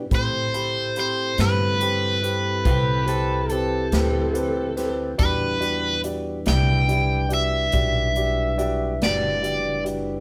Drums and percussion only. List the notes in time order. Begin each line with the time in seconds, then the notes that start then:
0.11 kick, closed hi-hat
0.54 closed hi-hat
0.96 closed hi-hat
1.38 snare, closed hi-hat
1.81 closed hi-hat
2.24 closed hi-hat
2.65 kick, closed hi-hat
3.08 closed hi-hat
3.50 closed hi-hat
3.92 snare, closed hi-hat
4.35 closed hi-hat
4.77 snare, closed hi-hat
5.19 kick, closed hi-hat
5.62 closed hi-hat
6.04 closed hi-hat
6.46 snare, closed hi-hat
6.89 closed hi-hat
7.30 closed hi-hat
7.72 kick, closed hi-hat
8.16 closed hi-hat
8.59 closed hi-hat
9.02 snare, closed hi-hat
9.44 closed hi-hat
9.86 closed hi-hat